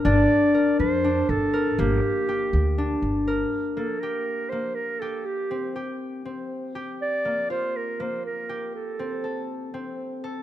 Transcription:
X:1
M:7/8
L:1/8
Q:1/4=121
K:Gm
V:1 name="Clarinet"
d3 c2 A2 | G6 z | z A B2 c B A | G2 z4 z |
d2 c B c B2 | A4 z3 |]
V:2 name="Harp"
D2 B2 D2 B | B,2 G2 D2 B | z B, G2 B,2 G | z C G2 C2 G |
z B, F2 B,2 G | z C A2 C2 A |]
V:3 name="Upright bass" clef=bass
G,,, z2 F,,2 G,,,2 | G,,, z2 D,,2 G,,,2 | z6 z | z6 z |
z6 z | z6 z |]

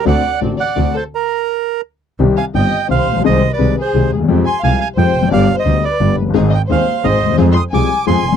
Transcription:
X:1
M:3/4
L:1/16
Q:1/4=173
K:Dphr
V:1 name="Bandoneon"
^f4 z2 f4 c2 | B8 z4 | [K:Cm] z2 a2 g4 f4 | e3 d3 c4 z2 |
z2 c'2 a2 a2 g4 | f3 e3 d4 z2 | z2 g2 f4 e4 | z2 e'2 d'4 c'4 |]
V:2 name="Violin section"
d4 z2 d4 A2 | z12 | [K:Cm] z2 f2 e4 c4 | c3 =B3 A4 z2 |
z2 a2 f2 f2 c4 | d3 c3 =B4 z2 | z2 e2 c4 c4 | z2 c'2 a4 a4 |]
V:3 name="String section"
[CD^F]2 z2 [CDF]2 z2 [CDF]2 z2 | z12 | [K:Cm] z12 | z12 |
z12 | z12 | [CEA]2 z2 [CEA]2 z2 [CEA]2 z2 | [CFA]2 z2 [CFA]2 z2 [CFA]2 z2 |]
V:4 name="Grand piano" clef=bass
[D,,D,A,C^F]2 z2 [A,,,A,,D,A,CF]2 z2 [D,,D,A,CF]2 z2 | z12 | [K:Cm] [C,,C,E,G,CG]2 z2 [G,,,G,,E,G,CG]2 z2 [C,,C,E,G,CG]2 z/2 =A,,,/2 B,,,/2 =B,,,/2 | [C,,C,E,A,CA]2 z2 [C,,C,E,A,CA]2 z2 [C,,C,E,A,CA]2 z/2 D,,/2 E,,/2 =E,,/2 |
[F,,F,A,CG]2 z2 [C,,C,F,A,CG]2 z2 [F,,F,A,CG]2 z/2 =E,,/2 F,,/2 ^F,,/2 | [G,,,G,,D,G,=B,G]2 z2 [D,,D,G,B,G]2 z2 [G,,,G,,D,G,B,G]2 z/2 F,,,/2 ^F,,,/2 G,,,/2 | [A,,,A,,E,A,CA]2 z2 [E,,,E,,E,A,CA]2 z2 [A,,,A,,E,A,CA]2 z/2 D,,/2 E,,/2 =E,,/2 | [F,,F,A,CA]2 z2 [C,,C,F,A,CA]2 z2 [F,,F,A,CA]2 z/2 =E,,/2 F,,/2 z/2 |]
V:5 name="Double bass" clef=bass
D,,2 z2 A,,,2 z2 D,,2 z2 | z12 | [K:Cm] C,,2 z2 G,,,2 z2 C,,2 B,,,2 | C,,2 z2 C,,2 z2 C,,2 E,,2 |
F,,2 z2 C,,2 z2 F,,2 F,,,2 | G,,,2 z2 D,,2 z2 G,,,2 ^F,,,2 | A,,,2 z2 E,,2 z2 A,,,2 E,,2 | F,,2 z2 C,,2 z2 F,,2 F,,,2 |]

